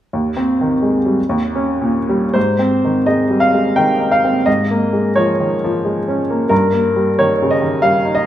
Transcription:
0.13 1.15 D#2 soft
0.37 0.73 C4 soft
0.61 0.97 D#3 soft
0.83 1.18 G#3 soft
1.06 1.18 G3 soft
1.29 2.32 D#2 soft
1.55 1.99 C#4 soft
1.82 2.25 A#2 soft
2.09 2.36 G3 soft
2.34 4.42 G#2 soft
2.34 3.07 C5 medium
2.59 2.98 C4 soft
2.85 3.22 D#3 soft
3.06 3.44 G#3 soft
3.06 3.42 D#5 soft
3.30 3.54 G3 soft
3.40 3.76 F5 medium
3.53 3.91 G#3 soft
3.76 4.14 D#3 soft
3.76 4.11 G5 medium
4.00 4.37 D#4 soft
4.12 4.46 F5 medium
4.24 4.47 C4 soft
4.46 6.47 G#2 soft
4.46 5.16 D#5 medium
4.71 5.08 A#3 soft
4.93 5.31 G#3 soft
5.16 5.54 F3 soft
5.16 6.50 C#5 medium
5.40 5.63 D#3 soft
5.64 5.99 F3 soft
5.85 6.20 G#3 soft
6.08 6.42 C#4 soft
6.30 6.51 A#3 soft
6.49 8.26 G2 soft
6.49 7.17 A#4 medium
6.73 7.09 A#3 soft
6.96 7.32 G3 soft
7.19 7.54 D#3 soft
7.19 7.51 C#5 medium
7.42 7.63 C#3 soft
7.51 7.83 D#5 medium
7.61 7.96 D#3 soft
7.82 8.18 G3 soft
7.82 8.15 F5 medium
8.05 8.26 D#4 soft
8.15 8.26 D#5 medium

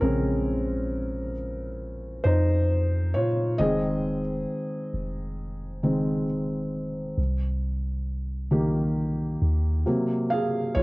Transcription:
0.00 2.21 A#1 loud
0.00 3.61 C#3 medium
0.00 0.02 G#3 soft
0.00 1.32 G#3 soft
0.00 0.03 C4 medium
0.00 1.32 C4 medium
0.00 1.32 C#4 medium
0.00 3.16 F4 medium
0.00 3.60 G#4 medium
0.00 1.31 A#4 medium
0.00 3.14 C#5 medium
0.00 3.58 D#5 loud
2.24 3.16 F2 loud
2.24 3.11 D#4 medium
2.24 3.17 C5 medium
3.14 3.57 A#2 loud
3.14 3.26 F4 medium
3.14 3.24 C#5 medium
3.58 4.45 F1 loud
3.58 4.19 D#3 medium
3.58 4.19 G#3 medium
3.58 4.20 C4 medium
3.58 9.83 G#4 medium
3.58 9.82 D#5 loud
4.93 7.13 F1 loud
5.83 6.24 D#3 soft
5.83 6.24 G#3 soft
5.83 6.24 C4 medium
7.17 9.37 C2 loud
8.51 9.82 D#3 medium
8.51 9.82 A#3 medium
8.51 9.82 G4 medium
9.41 9.85 D#2 loud
9.86 10.72 C3 medium
9.86 10.72 F#3 medium
9.86 10.72 A#3 medium
10.30 10.73 G#4 medium
10.30 10.77 F5 medium
10.75 10.83 A#1 loud
10.75 10.83 F4 medium
10.75 10.83 C#5 loud

